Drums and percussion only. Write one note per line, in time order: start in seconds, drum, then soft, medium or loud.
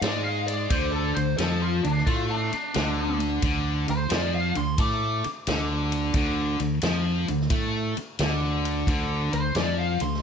0.02 snare loud
0.02 ride medium
0.48 ride medium
0.70 kick loud
0.70 ride loud
1.16 ride medium
1.38 snare loud
1.38 ride medium
1.84 ride medium
1.98 snare soft
2.07 kick loud
2.07 ride medium
2.53 ride medium
2.74 snare loud
2.74 ride medium
3.20 ride medium
3.42 kick loud
3.42 ride loud
3.88 ride medium
4.10 snare loud
4.10 ride medium
4.55 ride medium
4.78 kick loud
4.78 ride medium
5.24 ride medium
5.47 snare loud
5.47 ride medium
5.92 ride medium
6.14 kick loud
6.14 ride loud
6.60 ride medium
6.82 snare loud
6.82 ride loud
7.28 ride medium
7.40 snare soft
7.50 kick loud
7.50 ride loud
7.97 ride medium
8.19 snare loud
8.19 ride medium
8.65 ride medium
8.87 kick loud
8.87 ride medium
9.33 ride medium
9.55 snare loud
9.55 ride medium
10.00 ride medium
10.14 snare soft